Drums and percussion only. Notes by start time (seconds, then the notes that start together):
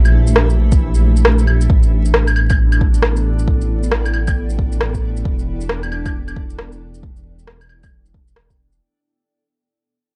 0.05 claves, shaker
0.27 shaker
0.36 cross-stick
0.50 shaker
0.72 kick, shaker
0.94 shaker
1.17 shaker
1.25 cross-stick
1.39 shaker
1.47 claves
1.61 shaker
1.70 kick
1.83 shaker
2.05 shaker
2.14 cross-stick
2.27 claves, shaker
2.36 claves
2.50 kick, claves, shaker
2.72 claves, shaker
2.81 kick
2.94 shaker
3.02 cross-stick
3.16 shaker
3.39 shaker
3.48 kick
3.61 shaker
3.83 shaker
3.92 cross-stick
4.06 claves, shaker
4.14 claves
4.27 kick, claves, shaker
4.50 shaker
4.59 kick
4.72 shaker
4.81 cross-stick
4.94 kick, shaker
5.17 shaker
5.25 kick
5.39 shaker
5.61 shaker
5.69 cross-stick
5.83 claves, shaker
5.92 claves
6.06 kick, claves, shaker
6.28 claves, shaker
6.36 kick
6.50 shaker
6.59 cross-stick
6.72 shaker
6.94 shaker
7.03 kick
7.17 shaker
7.39 shaker
7.47 cross-stick
7.61 claves, shaker
7.69 claves
7.83 kick, claves, shaker
8.06 shaker
8.14 kick
8.28 shaker
8.36 cross-stick
8.50 kick, shaker
8.72 shaker